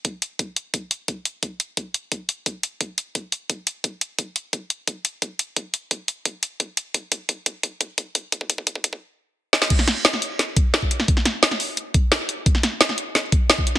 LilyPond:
\new DrumStaff \with { instrumentName = "Drums" } \drummode { \time 4/4 \tempo 4 = 174 <hh bd>8 hh8 <hh bd>8 hh8 <hh bd>8 hh8 <hh bd>8 hh8 | <hh bd>8 hh8 <hh bd>8 hh8 <hh bd>8 hh8 <hh bd>8 hh8 | <hh bd>8 hh8 <hh bd>8 hh8 <hh bd>8 hh8 <hh bd>8 hh8 | <hh bd>8 hh8 <hh bd>8 hh8 <hh bd>8 hh8 <hh bd>8 hh8 |
<hh bd>8 hh8 <hh bd>8 hh8 <hh bd>8 hh8 <hh bd>8 hh8 | <hh bd>8 <hh bd>8 <hh bd>8 <hh bd>8 <hh bd>8 <hh bd>8 <hh bd>8 <hh bd>8 | <hh bd>16 bd16 <hh bd>16 bd16 <hh bd>16 bd16 <hh bd>16 bd16 r4 r8 sn16 sn16 | <cymc hh bd>16 sn16 <hh sn>8 <hh sn>16 sn16 hh8 <hh sn>8 <hh bd>8 <hh sn>16 bd16 hh16 sn16 |
<hh bd>16 sn16 <hh sn>8 <hh sn>16 sn16 hho8 hh8 <hh bd>8 <hh sn>8 hh8 | <hh bd>16 sn16 <hh sn>8 <hh sn>16 sn16 hh8 <hh sn>8 <hh bd>8 <hh sn>16 bd16 hh16 sn16 | }